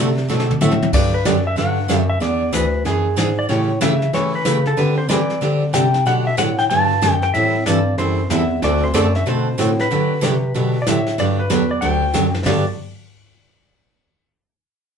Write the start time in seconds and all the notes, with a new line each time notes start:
Already playing: C3 D5
0.18 snare
0.28 B2 D3 A3 C4 F#4 A4, snare
0.40 snare
0.51 mid tom
0.61 A2 D3 A3 C4 F#4 A4 E5, hi-hat pedal, high tom
0.71 high tom
0.82 high tom
0.93 G2 D3 F#3 B3 D4 G4 D5, brush sweep, kick, snare, crash
1.14 B4
1.25 F#2 D3 F#3 B3 D4 G4 D5, snare, hi-hat pedal
1.47 E5
1.56 G2 D3 F#3 B3 D4 G4 F#5, brush sweep, snare
1.88 F#2 D3 F#3 B3 D4 G4, snare, hi-hat pedal
2.10 E5
2.20 E2 E3 B3 D4 G#4 D5, brush sweep, snare
2.53 D2 E3 B3 D4 G#4 B4, snare, hi-hat pedal
2.85 F#2 E3 B3 D4 G#4, brush sweep, snare
3.16 G#2 E3 B3 D4 G#4, snare, hi-hat pedal
3.39 D5
3.49 A2 C#3 E3 A3 C#4 G4 C#5, brush sweep, snare
3.81 C#3 E3 A3 C#4 G4 E5, snare, hi-hat pedal
4.02 snare
4.13 C#3 E3 A3 C#4 G4 C#5, brush sweep, snare
4.35 B4
4.45 C#3 E3 A3 C#4 G4, snare, hi-hat pedal
4.66 A4, snare
4.77 D3 G3 C4 D4 G4 B4, brush sweep, snare
4.98 C5
5.09 D3 E3 G3 C4 D4 G4 D5, snare, hi-hat pedal
5.30 snare
5.41 D3 G3 C4 D4 G4, brush sweep, snare
5.73 C3 D3 G3 C4 D4 G4 G5, snare, hi-hat pedal
5.94 snare
6.06 B2 D3 F#3 B3 D4 G4 F#5, brush sweep, snare
6.27 E5
6.37 A2 D3 F#3 B3 D4 G4 F#5, snare, hi-hat pedal
6.58 G5, snare
6.70 G2 D3 F#3 B3 D4 G4 A5, brush sweep, snare
7.02 F#2 D3 F#3 B3 D4 G4, snare, hi-hat pedal
7.22 G5, snare
7.34 A2 E3 G3 C4 E4 A4 E5, brush sweep, snare
7.66 G2 E3 G3 C4 E4 A4 D5, snare, hi-hat pedal
7.98 F#2 E3 G3 C4 E4 A4 C5, brush sweep, snare
8.29 E2 E3 G3 C4 E4 A4 E5, snare, hi-hat pedal
8.62 D2 D3 A3 C4 F#4 A4 D5, brush sweep, snare
8.84 C5
8.94 F#2 D3 A3 C4 F#4 A4 D5, snare, hi-hat pedal
9.15 E5, snare
9.26 B2 D3 A3 C4 F#4 A4 C5, brush sweep, snare
9.58 A2 D3 A3 C4 F#4 A4, snare, hi-hat pedal
9.79 B4, snare
9.91 D3 F#3 B3 D4 G4, brush sweep, snare
10.21 C3 D3 F#3 B3 D4 G4, snare, hi-hat pedal
10.54 B2 D3 F#3 B3 D4 G4, brush sweep, snare
10.82 D5
10.87 A2 D3 F#3 B3 D4 G4 E5, snare, hi-hat pedal
11.07 snare
11.18 G2 D3 F#3 B3 D4 G4 D5, brush sweep, snare
11.39 B4
11.50 E2 D3 F#3 B3 D4 G4, snare, hi-hat pedal
11.71 D5
11.81 D2 D3 F#3 B3 D4 G4 G5, brush sweep, snare
12.14 F#2 D3 F#3 B3 D4 G4, snare, hi-hat pedal
12.34 snare
12.46 G2 D3 F#3 B3 D4 G4 D5, snare, floor tom, open hi-hat